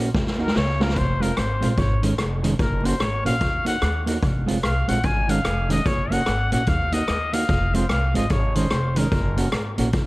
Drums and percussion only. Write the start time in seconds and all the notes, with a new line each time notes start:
0.15 kick, snare
0.27 snare
0.48 snare
0.56 snare
0.81 snare
0.89 snare
0.96 kick, closed hi-hat
1.22 closed hi-hat
1.37 cross-stick, closed hi-hat
1.62 closed hi-hat
1.77 kick, closed hi-hat
2.03 closed hi-hat
2.18 cross-stick, closed hi-hat
2.44 closed hi-hat
2.59 kick, closed hi-hat
2.85 closed hi-hat
3.00 cross-stick, closed hi-hat
3.26 closed hi-hat
3.41 kick, closed hi-hat
3.66 closed hi-hat
3.82 cross-stick, closed hi-hat
4.07 closed hi-hat
4.22 kick, closed hi-hat
4.48 closed hi-hat
4.63 cross-stick, closed hi-hat
4.88 closed hi-hat
5.03 kick, closed hi-hat
5.29 closed hi-hat
5.45 cross-stick, closed hi-hat
5.70 closed hi-hat
5.86 kick, closed hi-hat
6.12 closed hi-hat
6.26 cross-stick, closed hi-hat
6.52 closed hi-hat
6.67 kick, closed hi-hat
6.92 closed hi-hat
7.08 cross-stick, closed hi-hat
7.33 closed hi-hat
7.49 kick, closed hi-hat
7.74 closed hi-hat
7.89 cross-stick, closed hi-hat
8.15 closed hi-hat
8.30 kick, closed hi-hat
8.55 closed hi-hat
8.71 cross-stick, closed hi-hat
8.96 closed hi-hat
9.12 kick, closed hi-hat
9.38 closed hi-hat
9.52 cross-stick, closed hi-hat
9.78 closed hi-hat
9.93 kick, closed hi-hat